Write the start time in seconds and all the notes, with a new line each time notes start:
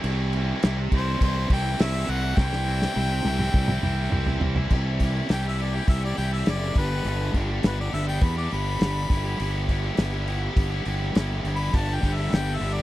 0.04 C2 C3 E3 G3 C4 E4, crash
0.33 E3 G3 C4, crash
0.37 E4
0.63 C2 C3 E3 G3 C4 E4, snare, crash
0.79 muted distorted electric guitar stroke
0.92 C2 E3 G3 C4 E4, kick, crash
0.97 C5
1.06 G3 C4 E4
1.21 C2 C5, kick, crash
1.35 G3 C4 E4
1.50 C2 E3 G3 C4 E4 G5, kick, crash
1.79 C2 C3 E3 G3 C4 E4 E5, snare, crash
1.94 G3 C4 E4
2.08 C2 E3 G3 C4 E4 F#5, crash
2.22 G3 C4 E4
2.37 C2 C3 E3 G3 C4 E4 G5, kick, snare
2.53 snare
2.66 E3 G3 C4 E4
2.82 snare
2.95 C2 C3 E3 G3 C4 E4, high tom
3.11 muted distorted electric guitar stroke
3.24 C2 E3 G3 C4 E4, high tom
3.39 G3 C4 E4, mid tom
3.54 C2, kick
3.68 G3 C4 E4, mid tom
3.83 C2 E3 G3 C4 E4, mid tom
4.12 C2 C3 E3 G3 C4 E4, mid tom
4.27 G3 C4 E4, floor tom
4.41 C2 E3 G3 C4 E4, floor tom
4.56 G3 C4 E4, floor tom
4.70 C2 C3 E3 G3 E4 G4, kick, crash
5.00 E3 G3 E4 G4, kick, open hi-hat
5.15 G3 E4 G4
5.29 C2 C3 E3 G3 E4 G4 G5, snare, open hi-hat
5.45 G3 E4 G4 E5
5.59 E3 G3 E4 G4 D5, open hi-hat
5.74 G3 E4 G4 G5
5.88 C2 E5, kick, open hi-hat
6.03 G3 E4 G4 D5
6.17 C2 E3 G3 E4 G4 G5, open hi-hat
6.33 E5
6.46 F#1 C3 E3 G3 E4 G4 D5, snare, open hi-hat
6.75 G1 G2 D3 G3 B3 D4 G4 B4, kick, open hi-hat
6.91 G3 B3 D4 G4
7.05 G1 G2 D3 G3 B3 D4 G4, open hi-hat
7.34 G1 G3 B3 D4 G4, kick, open hi-hat
7.49 G3 B3 D4 G4
7.63 G1 G2 D3 G3 B3 D4 G4 B4, snare, open hi-hat
7.78 G3 B3 D4 G4 D5
7.91 G1 G3 B3 D4 G4 E5, open hi-hat
8.07 G3 B3 D4 G4 G5
8.21 E2 B5, kick, open hi-hat
8.36 G3 B3 D4 G4 D6
8.51 G1 G3 B3 D4 G4 B5, open hi-hat
8.80 G1 G2 D3 G3 B3 D4 G4, snare, open hi-hat
9.10 G1 G3 B3 E4 G4, kick, open hi-hat
9.25 B3 E4 G4
9.39 G1 G3 B3 E4 G4, open hi-hat
9.68 G3 B3 E4 G4, kick, open hi-hat
9.83 B3 E4 G4
9.97 G1 G3 B3 E4 G4, snare, open hi-hat
10.12 B3 E4 G4
10.26 G3 B3 E4 G4, open hi-hat
10.41 B3 E4 G4
10.56 G1, kick, open hi-hat
10.71 B3 E4 G4
10.85 G1 G3 B3 E4 G4, open hi-hat
11.15 G1 G3 B3 E4 G4, snare, open hi-hat
11.44 G1 G3 B3 E4 G4, open hi-hat
11.56 E4 G4 B5
11.61 B3
11.73 G1 G2 D3 G3 B3 D4 G4 A5, kick, open hi-hat
11.95 G5
12.03 G1 G3 B3 D4 G4, kick, open hi-hat
12.14 G4 E5
12.19 G3 B3 D4
12.32 G1 G2 D3 G3 B3 D4 G4 G5, snare, open hi-hat
12.48 G3 B3 D4 G4
12.56 E5
12.61 G1 G3 B3 D4 G4, open hi-hat
12.73 D4 G4 D5
12.78 G3 B3